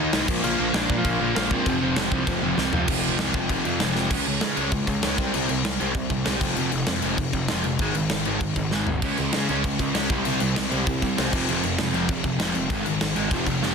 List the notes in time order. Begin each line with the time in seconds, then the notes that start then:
Already playing: D#3 D#4 D#5
0.00 A#3 D#4
0.13 C2 D#3 A#3 D#4, snare, crash
0.28 A#1 A#2 F3 A#3, kick, crash
0.43 A#1 A#2 F3 A#3 F4, crash
0.59 A#1 A#2 F3 A#3
0.74 A#1 A#2 F3 A#3 D4 D5, snare, crash
0.89 A#2 F3 A#3, kick
0.98 F3 F4
1.04 A#1 A#2 F3 A#3, kick, crash
1.21 A#1 A#2 F3 A#3
1.35 A#1 A#2 F3 A#3 F4, snare, crash
1.51 A#2 F3 A#3 C4 C5, kick
1.66 F1 F2 C3 F3, kick, crash
1.82 F1 F2 C3 F3
1.96 F1 F2 C3 F3, snare, crash
2.12 C2 F2 C3 F3, kick
2.27 F1 F2 C3 F3, kick, crash
2.42 F1 F2 C3 F3
2.57 C2 F2 C3 F3, snare
2.73 F2 C3 F3, floor tom
2.88 F1 F2 C3 F3, kick, crash
3.03 crash
3.19 C2 F2 C3 F3, snare, crash
3.34 F1 F2 C3 F3, kick, crash
3.49 F1 F2 C3 F3, kick, crash
3.65 F2 C3 F3, crash
3.80 F1 F2 C3 F3, snare, crash
3.95 F2 C3 F3, snare
4.11 C#2 C#3 G#3 C#4, kick, crash
4.26 C#2 C#3 G#3, crash
4.41 C#3 G#3, snare, crash
4.56 C#2 C#3 G#3 C#4, crash
4.72 C#2 C#3 G#3, kick, crash
4.87 C#2 C#3 G#3, kick, crash
5.02 C#2 C#3 G#3 C#4, snare, crash
5.17 C2 C3 G3 C4, kick, crash
5.33 C2 C3 G3 C4, crash
5.49 C2 C3 G3, crash
5.64 C2 C3 G3, snare, crash
5.79 C2 C3 G3 C4, crash
5.95 C2 C3 G3, kick, crash
6.10 C2 C3 G3, kick, crash
6.25 C2 C3 G3 C4, snare, crash
6.41 F1 F2 C3 F3, kick, crash
6.56 F1 F2 C3 F3, crash
6.72 F1 F2 C3, crash
6.87 F2 C3, snare, crash
7.02 F1 F2 C3 F3, crash
7.18 F1 F2 C3, kick, crash
7.33 F1 F2 C3, kick, crash
7.48 F1 F2 C3 F3, snare, crash
7.64 F1 F2 C3, crash
7.79 G#1 G#2 D#3 G#3, kick, crash
7.95 G#1 G#2 D#3, crash
8.10 G#1 G#2 D#3, snare, crash
8.25 G#1 G#2 D#3 G#3, crash
8.41 G#1 G#2 D#3, kick, crash
8.56 G#1 G#2 D#3, kick, crash
8.71 G#1 G#2 D#3 G#3, snare
8.87 G#1 G#2 D#3, floor tom
9.02 C#2 C#3 G#3 C#4, kick, crash
9.17 C#2 C#3 G#3, crash
9.33 C#3 G#3, snare, crash
9.49 C#2 C#3 G#3 C#4, crash
9.64 C#2 C#3 G#3, kick, crash
9.79 C#2 C#3 G#3, kick, crash
9.94 C#2 C#3 G#3 C#4, snare, crash
10.09 C2 C3 G3 C4, kick, crash
10.24 C2 C3 G3 C4, crash
10.40 C2 C3 G3, crash
10.56 C2 C3 G3 C4, snare, crash
10.71 C2 C3 G3 C4, crash
10.87 C2 C3 G3, kick, crash
11.02 C2 C3 G3, kick, crash
11.17 C2 C3 G3 C4, snare, crash
11.33 F1 F2 C3 F3, kick, crash
11.49 F1 F2 C3 F3, crash
11.63 F1 F2 C3, crash
11.78 F2 C3 F3, snare, crash
11.94 F1 F2 C3 F3, crash
12.09 F1 F2 C3, kick, crash
12.24 F1 F2 C3, kick, crash
12.39 F1 F2 C3 F3, snare, crash
12.55 F1 F2 C3, crash
12.70 G#1 G#2 D#3 G#3, kick, crash
12.86 G#1 G#2 D#3, crash
13.01 G#1 G#2 D#3, snare, crash
13.15 G#1 G#2 D#3 G#3, crash
13.31 F1 F2 C3 F3, kick, crash
13.47 F1 F2 C3, kick, crash
13.61 F1 F2 C3 F3, snare